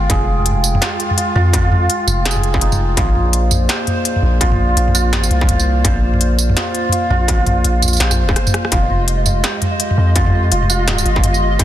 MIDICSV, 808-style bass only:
0, 0, Header, 1, 2, 480
1, 0, Start_track
1, 0, Tempo, 359281
1, 131, Time_signature, 4, 2, 24, 8
1, 15554, End_track
2, 0, Start_track
2, 0, Title_t, "808-style bass"
2, 0, Program_c, 0, 38
2, 129, Note_on_c, 0, 29, 94
2, 1075, Note_off_c, 0, 29, 0
2, 1811, Note_on_c, 0, 41, 100
2, 2515, Note_off_c, 0, 41, 0
2, 2770, Note_on_c, 0, 29, 104
2, 3955, Note_off_c, 0, 29, 0
2, 3970, Note_on_c, 0, 34, 100
2, 4915, Note_off_c, 0, 34, 0
2, 5647, Note_on_c, 0, 34, 101
2, 6353, Note_off_c, 0, 34, 0
2, 6369, Note_on_c, 0, 34, 100
2, 6863, Note_off_c, 0, 34, 0
2, 6863, Note_on_c, 0, 33, 100
2, 7074, Note_off_c, 0, 33, 0
2, 7088, Note_on_c, 0, 36, 105
2, 7794, Note_off_c, 0, 36, 0
2, 7809, Note_on_c, 0, 34, 96
2, 8755, Note_off_c, 0, 34, 0
2, 9490, Note_on_c, 0, 34, 100
2, 10195, Note_off_c, 0, 34, 0
2, 10212, Note_on_c, 0, 34, 96
2, 10676, Note_off_c, 0, 34, 0
2, 10690, Note_on_c, 0, 34, 96
2, 11155, Note_off_c, 0, 34, 0
2, 11650, Note_on_c, 0, 29, 93
2, 12595, Note_off_c, 0, 29, 0
2, 13330, Note_on_c, 0, 41, 101
2, 14035, Note_off_c, 0, 41, 0
2, 14050, Note_on_c, 0, 29, 96
2, 14755, Note_off_c, 0, 29, 0
2, 14768, Note_on_c, 0, 31, 99
2, 15474, Note_off_c, 0, 31, 0
2, 15489, Note_on_c, 0, 29, 97
2, 15554, Note_off_c, 0, 29, 0
2, 15554, End_track
0, 0, End_of_file